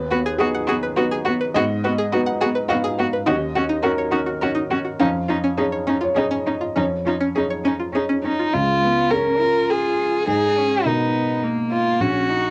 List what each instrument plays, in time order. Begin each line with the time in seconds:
Already playing: felt piano D#2 B4
0.11 cello B3, violin F#4, synth pluck B4
0.26 synth pluck G#4
0.38 cello B3, felt piano D#4 F#4 G#4 B4, violin F#4, synth pluck D#5
0.54 synth pluck F#5
0.67 cello B3, violin F#4, synth pluck G#4
0.83 synth pluck B4
0.96 cello B3, felt piano D#4 F#4 B4, violin F#4, synth pluck D#5
1.11 synth pluck G#4
1.25 cello B3, violin F#4
1.41 synth pluck B4
1.54 felt piano G#2 D#5, cello B3, violin F#4, synth pluck G#4
1.84 cello B3, violin F#4, synth pluck B4
1.98 synth pluck G#4
2.12 cello B3, felt piano D#4 F#4 B4, violin F#4, synth pluck D#5
2.26 synth pluck F#5
2.41 cello B3, violin F#4, synth pluck G#4
2.55 synth pluck B4
2.69 cello B3, felt piano D#4 F#4 B4 F5, violin F#4, synth pluck D#5
2.84 synth pluck G#4
2.98 cello B3, violin F#4
3.13 synth pluck B4
3.26 felt piano D#2 D#5, cello C#4, synth pluck D#4, violin F#4
3.55 cello C#4, synth pluck F#4, violin F#4
3.69 synth pluck D#4
3.83 cello C#4, felt piano D#4 F#4 A#4 C#5, violin F#4, synth pluck A#4
3.98 synth pluck C#5
4.11 cello C#4, synth pluck D#4, violin F#4
4.26 synth pluck F#4
4.41 cello C#4, felt piano D#4 F#4 C#5, violin F#4, synth pluck A#4
4.55 synth pluck D#4
4.70 cello C#4, violin F#4
4.85 synth pluck F#4
4.99 felt piano F2 F5, synth pluck C#4, cello C#4, violin D#4
5.28 cello C#4, violin D#4, synth pluck F4
5.44 synth pluck C#4
5.58 cello C#4, violin D#4, felt piano D#4 G#4 C#5, synth pluck G#4
5.72 synth pluck C#5
5.87 synth pluck C#4, cello C#4, violin D#4
6.01 synth pluck F4, felt piano C#5
6.14 cello C#4, felt piano D#4 G#4 C#5 D#5, violin D#4, synth pluck G#4
6.31 synth pluck C#4
6.46 cello C#4, violin D#4
6.61 synth pluck F4
6.76 felt piano F2 C#5, synth pluck C#4, cello C#4, violin D#4
7.05 cello C#4, violin D#4, synth pluck F4
7.20 synth pluck C#4
7.35 cello C#4, felt piano D#4 G#4 C#5, violin D#4, synth pluck G#4
7.50 synth pluck C#5
7.64 cello C#4, synth pluck C#4, violin D#4
7.80 synth pluck F4
7.92 cello C#4, felt piano D#4 G#4 C#5, violin D#4, synth pluck G#4
8.09 synth pluck C#4
8.24 cello C#4, violin D#4
8.39 synth pluck F4
8.53 felt piano C#2, cello G#3, violin F4
8.83 cello B3
9.11 cello C#4, felt piano C#4 G#4 C#5, violin A#4
9.42 cello F4
9.70 violin G#4
10.27 felt piano G#2, cello D#4, violin G#4
10.58 cello C#4
10.85 felt piano B2 A#4 D#5, cello B3, violin D#4
11.43 cello A#3
11.72 violin F4
12.00 felt piano A#1, cello C#4, violin F#4
12.29 cello D#4